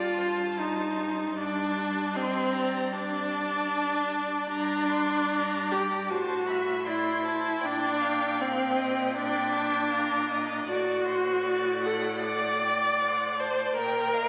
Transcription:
0.00 4.46 G2 medium
0.00 0.61 F4 loud
0.00 0.19 D5 medium
0.00 1.34 A5 medium
0.18 1.36 C5 medium
0.59 1.37 D#4 medium
1.35 2.17 D4 loud
1.35 2.15 D5 medium
1.35 2.17 A5 medium
2.14 2.95 C4 loud
2.14 2.55 D#5 medium
2.14 2.54 C6 medium
2.52 6.11 D5 medium
2.52 2.95 A#5 medium
2.93 4.49 D4 loud
2.93 4.50 A5 medium
4.49 6.11 G2 medium
4.49 5.73 D4 loud
4.49 4.91 A#5 medium
4.90 5.30 C6 medium
5.29 6.08 A#5 medium
5.71 6.11 G4 medium
6.09 7.61 A2 medium
6.09 6.86 F#4 medium
6.09 6.48 C5 medium
6.09 6.49 A5 medium
6.47 6.88 E5 medium
6.47 6.87 B5 medium
6.86 7.67 E4 medium
6.86 7.23 D5 medium
6.86 7.26 C6 medium
7.24 7.63 C5 medium
7.24 7.61 A5 medium
7.61 10.63 A#2 medium
7.61 8.01 D5 medium
7.61 7.99 G5 medium
7.66 8.42 D4 loud
8.00 8.42 F5 medium
8.00 8.39 G5 medium
8.38 9.16 C4 loud
8.38 8.78 F5 medium
8.38 9.15 G5 medium
8.76 9.16 D#5 medium
9.14 10.67 D4 loud
9.14 9.52 D5 medium
9.14 9.55 G5 medium
9.53 9.93 G5 medium
9.53 9.91 A5 medium
9.92 10.31 F5 medium
9.92 10.66 A#5 medium
10.30 10.70 D#5 medium
10.67 13.71 A2 medium
10.67 11.87 F#4 loud
10.67 11.06 D5 medium
11.05 11.46 C5 medium
11.05 11.47 C5 medium
11.44 11.83 D5 medium
11.44 13.03 D5 medium
11.83 12.25 A4 medium
11.83 12.23 F#5 medium
12.24 13.41 D5 loud
12.24 12.66 F#5 medium
12.64 13.01 G5 medium
13.00 13.40 C5 medium
13.00 13.38 F#5 medium
13.39 13.75 C5 loud
13.39 13.79 D5 medium
13.39 13.75 A5 medium
13.75 14.29 A#2 medium
13.75 14.29 A#4 loud
13.75 14.15 G5 medium
13.75 14.14 G5 medium
14.13 14.29 D#5 medium
14.13 14.29 F5 medium

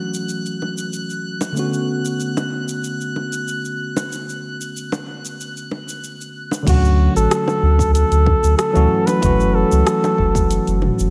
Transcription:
0.00 1.51 E3 medium
0.00 1.52 F#3 medium
0.00 1.53 A3 medium
0.00 1.54 C#4 medium
0.00 1.54 F#4 medium
0.00 6.68 F#6 medium
0.14 shaker medium
0.29 shaker soft
0.46 shaker soft
0.62 high bongo medium
0.78 shaker medium
0.93 shaker medium
1.10 shaker soft
1.41 high bongo medium
1.41 shaker medium
1.52 6.61 D3 medium
1.52 6.63 A3 medium
1.52 6.63 B3 medium
1.57 6.64 C#4 medium
1.57 6.65 F#4 medium
1.57 shaker medium
1.73 shaker soft
2.05 shaker medium
2.20 shaker medium
2.37 high bongo medium
2.37 shaker soft
2.69 shaker medium
2.84 shaker soft
3.01 shaker soft
3.16 high bongo medium
3.33 shaker medium
3.48 shaker medium
3.65 shaker soft
3.96 high bongo medium
3.96 shaker medium
4.12 shaker medium
4.29 shaker soft
4.61 shaker medium
4.77 shaker medium
4.92 high bongo medium
4.92 shaker soft
5.25 shaker medium
5.41 shaker soft
5.57 shaker soft
5.71 high bongo medium
5.89 shaker medium
6.04 shaker medium
6.21 shaker soft
6.51 high bongo medium
6.51 shaker medium
6.63 7.08 D2 loud
6.63 8.70 D3 medium
6.63 8.71 F#3 medium
6.63 8.72 A3 medium
6.63 kick loud
6.67 8.73 C#4 medium
6.67 7.13 F#4 medium
6.67 8.74 F#4 loud
6.67 closed hi-hat medium
6.67 mid tom medium
6.67 crash loud
6.67 shaker medium
6.85 shaker soft
7.16 7.27 A1 medium
7.16 7.91 A4 medium
7.16 shaker medium
7.31 cross-stick loud
7.31 closed hi-hat medium
7.31 shaker medium
7.48 high bongo medium
7.48 shaker soft
7.62 8.04 D2 medium
7.79 kick loud
7.79 shaker medium
7.93 8.54 A4 medium
7.93 closed hi-hat medium
7.93 shaker medium
8.11 8.34 D2 medium
8.11 closed hi-hat soft
8.11 shaker soft
8.26 kick loud
8.26 high bongo medium
8.43 8.54 D2 loud
8.43 shaker medium
8.58 9.08 A4 loud
8.58 cross-stick loud
8.58 closed hi-hat medium
8.58 shaker medium
8.73 8.87 D2 loud
8.73 9.18 E3 loud
8.73 9.18 F#3 medium
8.73 9.19 A3 medium
8.73 9.19 C#4 medium
8.73 9.20 F#4 loud
8.73 closed hi-hat soft
8.73 mid tom medium
8.73 shaker soft
9.06 9.56 B4 loud
9.06 closed hi-hat soft
9.06 high bongo medium
9.06 shaker medium
9.19 9.64 F#1 loud
9.19 11.10 E3 medium
9.19 11.10 F#3 medium
9.19 11.10 A3 medium
9.19 kick loud
9.19 closed hi-hat medium
9.19 mid tom medium
9.23 11.10 C#4 medium
9.23 11.10 F#4 loud
9.23 shaker medium
9.40 shaker soft
9.55 10.82 A4 loud
9.72 9.83 C#2 medium
9.72 shaker medium
9.87 cross-stick loud
9.87 closed hi-hat medium
9.87 shaker medium
10.04 high bongo loud
10.04 shaker soft
10.18 10.60 F#1 medium
10.18 kick medium
10.35 kick loud
10.35 shaker medium
10.51 closed hi-hat medium
10.51 shaker medium
10.67 10.90 F#1 medium
10.67 closed hi-hat soft
10.67 shaker soft
10.82 mid tom medium
10.82 high bongo medium
10.99 11.10 F#1 loud
10.99 shaker medium

